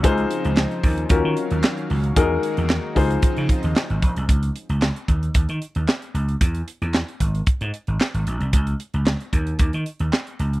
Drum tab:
HH |xxxx-xoxx-xx-xox|x-xx--oxxxxx-xxx|xxxx-xxxxxxx-xxx|xxxx-xxxxxxx-xxx|
CP |----x-------x---|----x-------x---|----x-------x---|----x-------x---|
SD |----o-------o---|----o-------o---|----o-------o---|----o-------o---|
BD |o-----o-o-------|o-----o-o-o---o-|o-----o-o-------|o-----o-o-------|

HH |xxxx-xxxxxxx-xxx|
CP |----x-------x---|
SD |----o-------o---|
BD |o-----o-o-------|